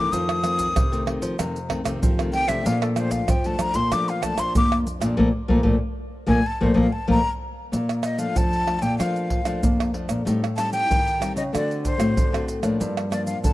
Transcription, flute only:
Already playing: D6
0.12 D#6
2.33 G5
2.48 E5
2.66 F5
2.82 A4
2.97 C5
3.11 F5
3.30 G5
3.46 A5
3.61 A#5
3.75 C6
3.92 D6
4.09 F5
4.22 A5
4.39 C6
4.57 D6
6.28 G#5
6.46 A5
6.63 C5
6.78 F5
6.92 A5
7.11 A#5
8.04 D#5
8.19 F5
8.37 A5
8.79 G5 A5
8.98 F5
10.57 A5
10.73 G5
11.37 D#5
11.54 D5
11.85 C5
13.11 D5
13.26 F5
13.43 A5

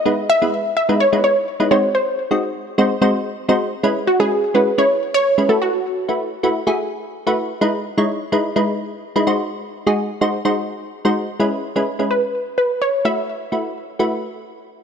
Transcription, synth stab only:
0.05 G#3 B3 D#4 E4 B4
0.42 G#3 B3 E4 B4
0.89 G#3 B3 D#4 E4 B4
1.12 G#3 B3 D#4 E4 B4
1.60 G#3 B3 D#4 E4 B4
1.71 G#3 C4 D#4 F#4 C5
2.31 G#3 C4 D#4 F#4 D#5
2.78 G#3 C4 D#4 F#4 C5
3.01 G#3 C4 D#4 F#4 C5
3.49 G#3 C4 D#4 F#4 C5
3.83 G#3 C#4 E4 B4
4.20 G#3 C#4 E4 B4
4.54 G#3 C#4 E4 F#4
4.78 G#3 C#4 E4 B4
5.38 G#3 C#4 E4 B4
5.49 A3 E4 F#4 B4
6.08 A3 E4 F#4 B4
6.43 A3 E4 F#4 B4
6.67 A3 E4 F#4 G#4
7.27 A3 E4 F#4 B4
7.61 G#3 D#4 E4 B4
7.98 G#3 D#4 E4 C#5
8.32 G#3 D#4 E4 B4
8.56 G#3 D#4 E4 B4
9.16 G#3 D#4 E4 B4
9.27 G#3 D#4 F#4 C5
9.87 G#3 D#4 F#4 G#4
10.21 G#3 D#4 F#4 C5
10.45 G#3 D#4 F#4 C5
11.05 G#3 D#4 F#4 C5
11.40 G#3 C#4 E4 B4
11.76 G#3 C#4 E4 B4
11.99 G#3 C#4 E4 B4
13.05 A3 E4 F#4 B4
13.52 A3 E4 F#4 B4
13.99 A3 E4 F#4 B4

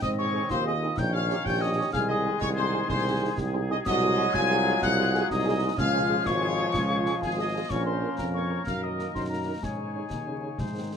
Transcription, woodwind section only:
0.01 C4 D#5
0.98 D#4 C#5
1.93 D#4 G#4
3.85 F#4 G#4
5.78 F4 G#4
7.71 F4 A#4
8.67 D#4
9.62 C#5
10.59 D#4 C5

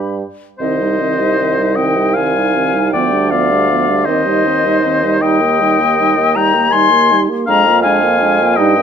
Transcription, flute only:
Already playing: B5
0.60 D#5
1.76 G5
2.16 G#5
2.92 G5
3.31 F5
4.05 D#5
5.20 G5
6.35 A#5
6.72 C6
7.48 A#5
7.83 G#5
8.55 G5

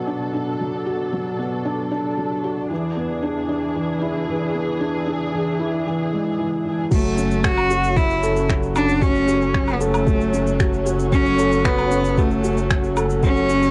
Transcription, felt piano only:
Already playing: F#3 B3 D4 F#4
0.07 D4
0.33 D4
0.60 F#3
0.86 F#4
1.12 F#3
1.39 B3
1.65 D4
1.91 D4
2.18 F#3
2.44 F#4
2.70 E3
2.96 B3
3.23 D4
3.49 D4
3.75 E3
4.02 E4
4.28 E3
4.54 B3
4.81 D4
5.07 D4
5.33 E3
5.60 E4
5.86 E3
6.12 G#3
6.39 E3
6.65 E3
6.91 F#3
7.18 C#4
7.44 F#4
7.70 F#4
7.97 F#3
8.23 A4
8.49 F#3
8.76 C#4
9.02 F#4
9.28 F#4
9.54 F#3
9.81 A4
10.07 F#3
10.33 C#4
10.60 F#4
10.86 F#4
11.12 F#3
11.39 A4
11.65 F#3
11.91 C#4
12.18 F#4
12.44 F#4
12.70 F#3
12.97 A4
13.23 F#3
13.49 C#4

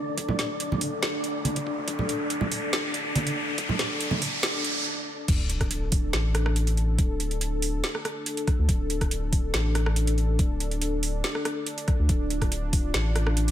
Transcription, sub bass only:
Already playing: A1
0.18 D1
1.78 D2
1.88 D1
2.73 A1
3.58 D1
5.28 D1
6.13 A1
6.98 D1
8.59 D2
8.69 D1
9.54 A1
10.39 D1
11.99 D2
12.09 D1
12.94 A1

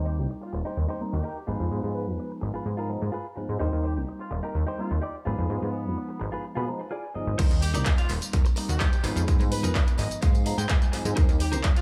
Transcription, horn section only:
0.07 G4
0.19 G4
0.42 F4
1.13 G4
1.95 B4
3.84 G4
3.96 G4
4.20 F4
4.78 F4
5.62 B3
7.62 G4
7.75 G4
7.98 F4
8.69 G4
9.52 B4
11.41 G4
11.53 G4
11.77 F4

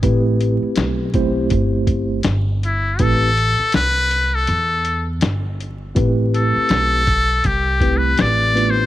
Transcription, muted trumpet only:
2.65 E4
3.01 A4
3.75 B4
4.34 A4
6.36 A4
7.46 G4
7.97 B4
8.21 D5
8.70 C5

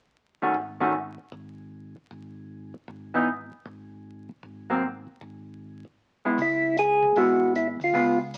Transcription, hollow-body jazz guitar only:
0.42 D#3 A3 C#4 F#4
0.80 D#3 A3 C#4 F#4
3.14 E3 B3 D#4
4.70 F#3 A#3 C4
6.25 G#3 B3 E4
7.16 G#3 B3 E4
7.94 G#3 B3 F4

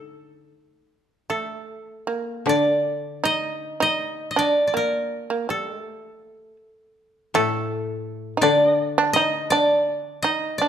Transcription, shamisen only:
0.00 A#3
1.30 A3
2.07 A#3
2.47 D4
3.24 D#4
3.80 D#4
4.36 D4
4.74 A#3
5.30 A#3
5.49 G3
5.69 G#3
5.81 A3
7.35 A3
8.37 D#4
8.43 D4
8.98 D4
9.16 D#4
9.52 D4
10.24 D#4
10.62 D4

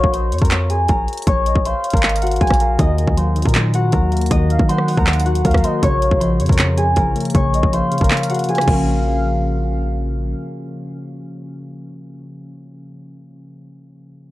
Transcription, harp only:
Already playing: F#4 A#4 C#5 F#5 A#5 C#6
0.13 C5 C6
0.42 A#4 A#5
0.70 G#4 G#5
0.90 A#4 A#5
1.27 C#5 C#6
1.66 C5 C6
1.94 A#4 A#5
2.22 F#4 F#5
2.41 G#4 G#5
2.60 A#4 A#5
2.79 D#5 D#6
3.17 C5 C6
3.46 A#4 A#5
3.74 F#4 F#5
3.92 A#4 A#5
4.31 D#5 D#6
4.69 C5 C6
4.98 A#4 A#5
5.25 F#4 F#5
5.45 A#4 A#5
5.64 C5 C6
5.83 C#5 C#6
6.20 C5 C6
6.49 A#4 A#5
6.77 G#4 G#5
6.97 A#4 A#5
7.35 C#5 C#6
7.73 C5 C6
8.01 A#4 A#5
8.30 F#4 F#5
8.49 G#4 G#5
8.68 A#4

